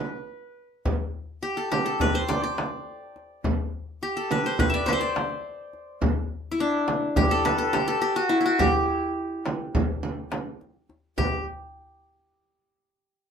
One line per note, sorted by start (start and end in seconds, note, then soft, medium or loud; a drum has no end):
0.00 0.92 B4 medium
0.86 darbuka dum medium
0.86 frame drum medium
1.43 1.71 G4 medium
1.43 darbuka ka soft
1.57 1.85 A4 medium
1.72 2.97 G4 medium
1.72 darbuka tek medium
1.72 frame drum medium
1.86 3.03 A4 medium
2.00 2.21 B4 medium
2.00 darbuka dum medium
2.00 frame drum medium
2.15 3.20 C5 medium
2.28 2.43 D5 medium
2.28 darbuka tek medium
2.28 frame drum medium
2.44 3.42 D5 medium
2.58 darbuka tek medium
2.58 frame drum medium
3.16 darbuka ka soft
3.44 darbuka dum medium
3.44 frame drum medium
4.02 5.28 G4 medium
4.02 darbuka ka soft
4.17 5.34 A4 medium
4.31 4.52 B4 medium
4.31 frame drum medium
4.46 4.66 C5 medium
4.59 4.88 B4 medium
4.59 frame drum medium
4.59 darbuka dum medium
4.70 5.61 E5 medium
4.74 5.00 D5 medium
4.86 4.99 B4 medium
4.86 4.92 C5 medium
4.86 darbuka tek medium
4.86 frame drum medium
4.93 5.98 C5 medium
5.01 5.99 D5 medium
5.16 darbuka tek medium
5.16 frame drum medium
5.73 darbuka ka soft
6.02 frame drum medium
6.02 darbuka dum medium
6.52 7.91 E4 medium
6.60 8.09 D4 medium
6.88 darbuka tek medium
6.88 frame drum medium
7.16 7.73 G4 medium
7.16 frame drum medium
7.16 darbuka dum medium
7.31 7.58 A4 medium
7.45 8.55 B4 medium
7.45 darbuka tek medium
7.45 frame drum medium
7.58 7.87 A4 medium
7.73 8.01 G4 medium
7.73 darbuka tek medium
7.73 frame drum medium
7.88 9.05 A4 medium
8.01 8.22 G4 medium
8.16 8.45 F#4 medium
8.29 8.40 E4 medium
8.29 darbuka ka soft
8.41 9.80 E4 medium
8.46 8.65 F#4 medium
8.59 10.56 G4 medium
8.59 darbuka dum medium
8.59 frame drum medium
8.74 darbuka ka soft
8.89 darbuka ka soft
9.46 darbuka tek medium
9.46 frame drum medium
9.75 darbuka dum medium
9.75 frame drum medium
10.03 frame drum medium
10.32 darbuka tek medium
10.32 frame drum medium
10.61 darbuka ka soft
10.89 darbuka ka soft
11.18 11.45 G4 medium
11.18 frame drum medium
11.18 darbuka dum medium